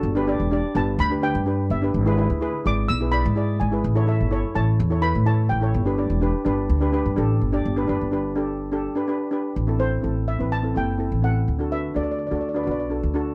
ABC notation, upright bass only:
X:1
M:4/4
L:1/16
Q:1/4=126
K:G
V:1 name="Upright bass" clef=bass
G,,,3 E,,,2 z G,,,2 D,,3 G,,3 G,,,2 | ^G,,,3 D,,2 z G,,,2 B,,,3 ^G,,3 G,,,2 | A,,,3 G,,,2 z A,,,2 E,,3 A,,3 A,,,2 | G,,,3 E,,,2 z G,,,2 D,,3 G,, A,,,2 G,,,2 |
G,,,2 G,,, G,,,8 z4 z | A,,,4 A,,,3 A,,,3 F,,,3 A,,,3 | D,,4 D,,3 D,,3 B,,,3 D,,3 |]